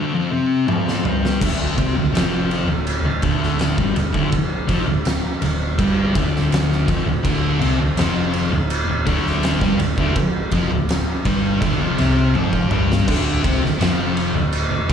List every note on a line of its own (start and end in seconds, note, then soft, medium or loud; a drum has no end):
0.00 0.13 D2 medium
0.00 0.13 D3 medium
0.13 0.31 F2 medium
0.13 0.31 F3 loud
0.33 0.68 C3 medium
0.33 0.68 C4 medium
0.68 1.04 F2 loud
0.68 1.04 F3 loud
0.68 high tom medium
0.88 snare medium
1.05 1.40 G2 medium
1.05 1.41 G3 medium
1.05 mid tom medium
1.25 snare medium
1.41 1.75 D1 medium
1.41 1.77 D2 loud
1.41 1.77 D3 loud
1.41 kick loud
1.41 crash loud
1.77 1.94 C2 medium
1.77 1.95 C3 medium
1.77 1.95 C4 medium
1.77 kick loud
1.77 ride medium
1.95 2.12 D1 medium
1.95 2.13 D2 medium
2.13 2.64 F1 loud
2.13 2.67 F2 loud
2.13 2.67 F3 loud
2.13 snare loud
2.13 ride loud
2.51 ride medium
2.67 3.02 D1 medium
2.67 2.98 D2 medium
2.87 ride loud
3.03 3.21 D1 medium
3.03 3.22 D2 medium
3.22 3.74 D1 medium
3.22 3.77 D2 medium
3.22 3.78 D3 loud
3.22 kick loud
3.22 ride medium
3.43 snare soft
3.59 snare loud
3.59 ride loud
3.78 3.95 G1 loud
3.78 3.95 G2 medium
3.78 3.96 G3 loud
3.78 kick loud
3.96 4.13 D1 medium
3.96 4.12 D2 medium
3.96 ride medium
4.13 4.31 D1 loud
4.13 4.31 D2 medium
4.13 4.32 D3 loud
4.13 kick loud
4.32 muted fingered electric bass stroke soft
4.32 muted distorted electric guitar stroke medium
4.32 kick loud
4.32 ride loud
4.69 4.86 F1 medium
4.69 4.86 F2 medium
4.69 4.86 F3 loud
4.69 kick loud
4.69 ride medium
4.87 5.21 D1 medium
4.87 5.17 D2 medium
5.05 snare loud
5.05 ride loud
5.42 5.76 D1 medium
5.42 5.72 D2 medium
5.42 ride medium
5.79 6.13 G1 loud
5.79 6.14 G2 loud
5.79 6.15 G3 loud
5.79 kick loud
5.79 ride loud
6.15 6.84 D1 medium
6.15 6.87 D2 medium
6.15 6.88 D3 medium
6.15 kick loud
6.15 ride medium
6.36 snare soft
6.52 snare loud
6.52 ride loud
6.72 snare soft
6.88 7.05 F1 loud
6.88 7.05 F2 medium
6.88 7.06 F3 medium
6.88 kick loud
6.88 ride medium
7.07 7.23 D1 medium
7.07 7.22 D2 medium
7.23 7.59 D1 loud
7.23 7.59 D2 loud
7.23 7.59 D3 loud
7.23 kick loud
7.23 crash loud
7.61 7.78 C2 medium
7.61 7.78 C3 medium
7.61 7.78 C4 medium
7.61 ride medium
7.79 7.96 D1 medium
7.79 7.97 D2 medium
7.96 8.48 F1 medium
7.96 8.51 F2 medium
7.96 8.51 F3 loud
7.96 snare loud
7.96 ride loud
8.34 ride medium
8.52 8.86 D1 medium
8.52 8.82 D2 medium
8.70 ride loud
8.88 9.05 D1 medium
8.88 9.05 D2 medium
9.06 9.58 D1 medium
9.06 9.60 D2 medium
9.06 9.60 D3 loud
9.06 kick loud
9.06 ride medium
9.27 snare soft
9.43 snare loud
9.43 ride loud
9.61 9.78 G1 loud
9.61 9.78 G2 loud
9.61 9.78 G3 loud
9.61 kick loud
9.61 snare soft
9.80 9.96 D1 medium
9.80 9.96 D2 medium
9.80 ride medium
9.98 10.15 D1 loud
9.98 10.15 D2 medium
9.98 10.15 D3 loud
9.98 kick loud
10.16 muted fingered electric bass stroke soft
10.16 muted distorted electric guitar stroke medium
10.16 kick loud
10.16 ride loud
10.51 10.69 F1 loud
10.51 10.69 F2 medium
10.51 10.70 F3 medium
10.51 kick loud
10.51 ride medium
10.71 11.05 D1 medium
10.71 11.00 D2 medium
10.89 snare loud
10.89 ride loud
11.25 11.60 G1 loud
11.25 11.61 G2 medium
11.25 11.61 G3 loud
11.25 kick loud
11.25 ride medium
11.62 11.79 D1 loud
11.62 11.79 D2 loud
11.62 11.80 D3 loud
11.62 kick loud
11.62 ride loud
11.80 11.97 F1 loud
11.80 11.97 F2 medium
11.80 11.98 F3 medium
11.98 12.32 C2 medium
11.98 12.34 C3 medium
11.98 12.34 C4 loud
11.98 ride medium
12.35 12.69 F1 loud
12.35 12.70 F2 loud
12.35 12.71 F3 loud
12.35 high tom medium
12.53 kick medium
12.71 13.05 G1 loud
12.71 13.06 G2 medium
12.71 13.07 G3 loud
12.71 mid tom loud
12.92 snare loud
13.06 13.41 D1 medium
13.06 13.42 D2 loud
13.06 13.43 D3 loud
13.06 kick loud
13.06 crash loud
13.44 13.60 C2 medium
13.44 13.61 C3 medium
13.44 13.61 C4 loud
13.44 kick loud
13.44 ride medium
13.61 13.79 D1 medium
13.61 13.80 D2 medium
13.65 snare soft
13.80 14.31 F1 loud
13.80 14.34 F2 loud
13.80 14.34 F3 loud
13.80 snare loud
13.80 ride loud
14.17 ride medium
14.34 14.69 D1 medium
14.34 14.64 D2 medium
14.53 ride loud
14.72 14.89 D1 medium
14.72 14.88 D2 medium
14.89 14.93 D1 medium
14.89 14.93 D2 loud
14.89 14.93 D3 loud
14.89 kick loud
14.89 ride medium